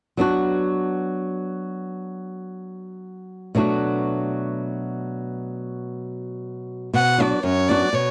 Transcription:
0.17 F#3 B3 D4 F#4
3.55 B2 F#3 A3 D4 F#4
6.94 B2 F#5
7.18 F#3 B3 D4 F#4 D5
7.44 F#2 C#5
7.69 F#3 B3 D4 F#4 D5
7.93 B2 C#5

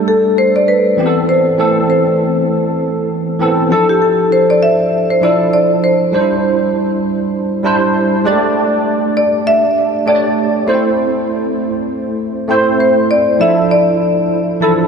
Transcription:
Already playing: G3 A3 D4 A4
0.08 A4
0.38 C5
0.56 D5
0.68 B4
0.97 E3 B3 C4 G4
1.06 A4
1.29 C5
1.57 E3 A3 C4 A4
1.90 C5
3.39 E3 B3 C4 A4
3.70 F3 D4 E4 A4
3.89 G4
4.02 A4
4.32 C5
4.50 D5
4.63 E5
5.10 C5
5.21 F3 D4 E4 A4 D5
5.53 D5
5.84 C5
6.12 G3 D4 D#4 C5
6.20 E4
7.63 G3 D4 E4 C5
8.24 G#3 D4 G4 D5
8.31 A3
9.17 D5
9.47 E5
10.06 A3 D4 G4 C#5 D5
10.15 D5
10.66 A3 B3 E4 C5
10.74 C4
12.48 A3 C4 E4 C5
12.80 C5
13.11 D5
13.39 F3 D4 E4 A4 E5
13.71 D5
14.60 E3 D4 E4 A4
14.67 F3

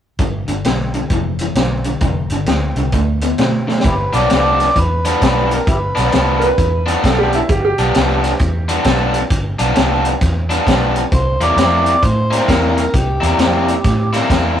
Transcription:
0.19 G1 G2 D3, kick, closed hi-hat
0.48 G1 G2 D3, closed hi-hat
0.64 B1 G2 D3, snare, closed hi-hat
0.94 G2 D3, closed hi-hat
1.10 F1 G2 E3, kick, closed hi-hat
1.39 G2 E3, closed hi-hat
1.55 B1 G2 D3, snare, closed hi-hat
1.84 G2 D3, closed hi-hat
2.01 F1 G2 D3, kick, closed hi-hat
2.30 G1 G2 D3, closed hi-hat
2.46 D2 G2 D3, snare, closed hi-hat
2.76 C2 G2 D3, closed hi-hat
2.92 D2 D3 A3, kick, closed hi-hat
3.21 D3 B3, closed hi-hat
3.38 B2 D3 A3, snare, closed hi-hat
3.67 D3 A3, snare
3.80 snare, closed hi-hat
3.84 G1 E4 G4 B4, kick
4.13 B1 G2 F3 B3 D4 D5, snare, closed hi-hat
4.30 C2 G2 F3 B3 D4, snare, closed hi-hat
4.34 A4 B4 D5
4.60 snare, closed hi-hat
4.76 E2 B4, kick, closed hi-hat
5.05 G2 F3 B3 D4, closed hi-hat
5.21 B1 G2 F3 B3 D4 B4, kick, snare, closed hi-hat
5.51 A#4, closed hi-hat
5.67 G1 E4 G4 B4, kick, closed hi-hat
5.95 B1 G2 F3 B3 D4, snare, closed hi-hat
6.12 C2 G2 F3 B3 D4, snare, closed hi-hat
6.39 A#4, closed hi-hat
6.43 B4
6.58 E2, kick, closed hi-hat
6.86 G2 F3 B3 D4, closed hi-hat
7.03 B1 G2 F3 B3 D4 A4, kick, snare, closed hi-hat
7.18 G4
7.33 E4, closed hi-hat
7.49 G1 G4, kick, closed hi-hat
7.60 F#4
7.65 G4
7.78 B1 G2 F3 B3 D4, closed hi-hat
7.94 C2 G2 F3 B3 D4, snare, closed hi-hat
8.24 snare, closed hi-hat
8.39 E2, kick, closed hi-hat
8.68 G2 F3 B3 D4, closed hi-hat
8.84 B1 G2 F3 B3 D4, kick, snare, closed hi-hat
9.14 closed hi-hat
9.30 G1, kick, closed hi-hat
9.59 B1 G2 F3 B3 D4, closed hi-hat
9.75 C2 G2 F3 B3 D4, snare, closed hi-hat
10.05 closed hi-hat
10.21 E2, kick, snare, closed hi-hat
10.50 G2 F3 B3 D4, closed hi-hat
10.66 B1 G2 F3 B3 D4, kick, snare, closed hi-hat
10.96 closed hi-hat
11.12 C2 C5, kick, closed hi-hat
11.40 E2 C3 G3 A#3 E4 D5, closed hi-hat
11.56 F2 C3 G3 A#3 E4 D5, snare, closed hi-hat
11.86 closed hi-hat
12.03 A2 C5, kick, closed hi-hat
12.31 C3 G3 A#3 E4, snare, closed hi-hat
12.47 E2 C3 G3 A#3 E4 A#4, kick, snare, closed hi-hat
12.77 A#4, closed hi-hat
12.94 C2 G4, kick, closed hi-hat
13.21 E2 C3 G3 A#3 E4, closed hi-hat
13.38 F2 C3 G3 A#3 E4, snare, closed hi-hat
13.68 closed hi-hat
13.84 A2, kick, snare, closed hi-hat
14.13 C3 G3 A#3 E4, snare, closed hi-hat
14.30 E2 C3 G3 A#3 E4, kick, snare, closed hi-hat

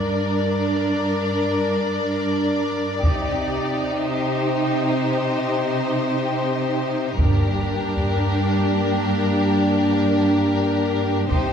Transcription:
Already playing: G2 D4 A#4 D5
3.03 C2 C3 C4 D#4 G4, taiko
4.07 C5
7.18 G1 G2 A#3 D4 G4 A#4, taiko
7.97 taiko
11.31 C2 C3 C4 D#4 G4 C5, taiko

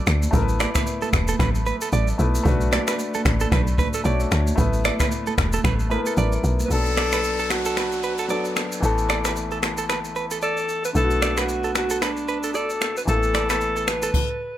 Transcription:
Already playing: A3 D4 F#4 B4
0.07 D2, finger snap, cross-stick, shaker
0.23 high conga, shaker
0.31 A1 A3 B3 E4, kick, low conga, shaker
0.36 A#4
0.42 B4
0.48 shaker
0.60 D5, finger snap, cross-stick, high conga, shaker
0.75 B4, finger snap, kick, cross-stick, high conga, shaker
0.87 shaker
1.02 A4, high conga, shaker
1.13 E1, finger snap, kick, cross-stick, shaker
1.28 A4, high conga, shaker
1.39 A1 B4, finger snap, kick, cross-stick, low conga, shaker
1.55 shaker
1.66 B4, high conga, shaker
1.81 A4, shaker
1.92 A1 D5, high conga, low conga, shaker
2.08 shaker
2.18 B1 A3 B3 E4 B4, shaker
2.35 high conga, shaker
2.43 B1 A3 D4 F#4, kick, low conga, shaker
2.48 B4
2.61 shaker
2.72 D5, finger snap, cross-stick, high conga, shaker
2.87 B4, finger snap, cross-stick, high conga, shaker
2.99 shaker
3.14 A4, high conga, shaker
3.25 A1, finger snap, kick, cross-stick, shaker
3.40 A4, high conga, shaker
3.52 B1 B4, finger snap, kick, cross-stick, low conga, shaker
3.67 shaker
3.78 B4, kick, high conga, shaker
3.93 A4, shaker
4.04 B1 A3 D4 F#4 C#5 D5, high conga, low conga, shaker
4.20 shaker
4.31 D2, finger snap, cross-stick, shaker
4.47 high conga, shaker
4.56 A1 A3 B3 E4, kick, low conga, shaker
4.61 B4
4.73 shaker
4.85 D5, finger snap, cross-stick, high conga, shaker
5.00 B4, finger snap, kick, cross-stick, high conga, shaker
5.11 shaker
5.27 A4, high conga, shaker
5.38 E1, finger snap, kick, cross-stick, shaker
5.53 A4, high conga, shaker
5.64 A1 B4, finger snap, kick, cross-stick, low conga, shaker
5.80 shaker
5.90 A3 B3 E4 A#4 B4, high conga, shaker
5.99 B4
6.06 A4, shaker
6.17 A1 D5, high conga, low conga, shaker
6.32 shaker
6.44 B1, shaker
6.60 high conga, shaker
6.65 F#3 B4
6.70 B1 B3 D4 A4, downlifter, shaker
6.86 shaker
6.97 D5, finger snap, cross-stick, shaker
7.12 B4, finger snap, cross-stick, shaker
7.24 shaker
7.39 A4, shaker
7.50 F#4, finger snap, cross-stick, shaker
7.65 A4, shaker
7.77 B4, finger snap, cross-stick, shaker
7.92 shaker
8.03 B4, shaker
8.18 A4, shaker
8.28 F#3 B3 D4 A4 D5, shaker
8.45 shaker
8.56 finger snap, cross-stick, shaker
8.72 shaker
8.80 A1 E3 A3 B3, shaker
8.85 A4
8.98 shaker
9.09 D5, finger snap, cross-stick, shaker
9.25 B4, finger snap, cross-stick, shaker
9.36 shaker
9.51 A4, shaker
9.63 finger snap, cross-stick, shaker
9.77 A4, shaker
9.89 B4, finger snap, cross-stick, shaker
10.04 shaker
10.16 B4, shaker
10.31 A4, shaker
10.42 A4 D5, shaker
10.57 shaker
10.69 shaker
10.85 B4, shaker
10.93 B1 D3 A3 B3 A4, shaker
10.98 E4
11.04 F#4
11.11 shaker
11.22 D5, finger snap, cross-stick, shaker
11.37 F#4 B4, finger snap, cross-stick, shaker
11.49 shaker
11.64 A4, shaker
11.75 F#4, finger snap, cross-stick, shaker
11.90 A4, shaker
12.02 D4 B4, finger snap, cross-stick, shaker
12.17 shaker
12.28 B4, shaker
12.43 A4, shaker
12.54 A4 D5, shaker
12.70 shaker
12.81 finger snap, cross-stick, shaker
12.97 B4, shaker
13.05 A1 E3 A3 A#3 A4, shaker
13.10 A4
13.15 B3
13.23 shaker
13.34 D5, finger snap, cross-stick, shaker
13.49 A4 B4, finger snap, cross-stick, shaker
13.61 shaker
13.76 A4, shaker
13.87 B4, finger snap, cross-stick, shaker
14.02 A4, shaker
14.14 kick, crash

